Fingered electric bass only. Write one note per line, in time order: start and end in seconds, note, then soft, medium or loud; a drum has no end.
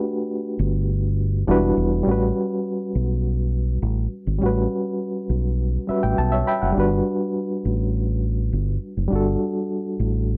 0.59 1.43 G1 loud
1.48 1.71 E1 loud
1.77 2.01 E1 medium
2.07 2.30 A1 medium
2.95 3.79 B1 medium
3.82 4.06 A1 medium
4.27 4.39 G#1 medium
4.42 4.65 A1 loud
5.29 5.77 B1 medium
5.89 muted fingered electric bass stroke soft
6.04 6.15 A1 medium
6.18 6.42 B1 medium
6.62 6.74 F#1 medium
6.77 7.01 G1 loud
7.65 8.49 A1 medium
8.53 8.77 G1 medium
8.97 9.09 F#1 medium
9.12 9.35 G1 medium
10.00 10.37 A1 medium